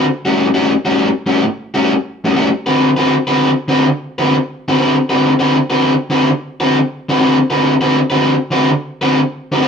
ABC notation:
X:1
M:4/4
L:1/16
Q:"Swing" 1/4=99
K:Dmix
V:1 name="Overdriven electric guitar"
z [A,,G,^CF] z [A,,G,CF] z [A,,G,CF] z2 [A,,G,CF] z2 [A,,G,CF] z2 [A,,G,CF] [A,,G,CF] | z [D,CFB] z [D,CFB] z [D,CFB] z2 [D,CFB] z2 [D,CFB] z2 [D,CFB] [D,CFB] | z [D,CFB] z [D,CFB] z [D,CFB] z2 [D,CFB] z2 [D,CFB] z2 [D,CFB] [D,CFB] | z [D,CFB] z [D,CFB] z [D,CFB] z2 [D,CFB] z2 [D,CFB] z2 [D,CFB] [D,CFB] |]